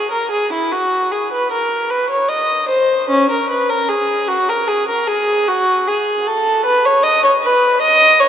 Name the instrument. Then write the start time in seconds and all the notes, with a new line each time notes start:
violin
Already playing: G#4
0.12 A#4
0.31 G#4
0.53 E4
0.72 F#4
1.12 G#4
1.32 B4
1.51 A#4
1.90 B4
2.10 C#5
2.29 D#5
2.68 C5
3.09 C#4
3.30 A#4
3.50 B4
3.70 A#4
3.89 G#4
4.28 F#4
4.49 A#4
4.68 G#4
4.88 A#4
5.07 G#4
5.48 F#4
5.88 G#4
6.27 A4
6.65 B4
6.85 C#5
7.04 D#5
7.24 C#5
7.43 B4
7.82 D#5
8.20 C#5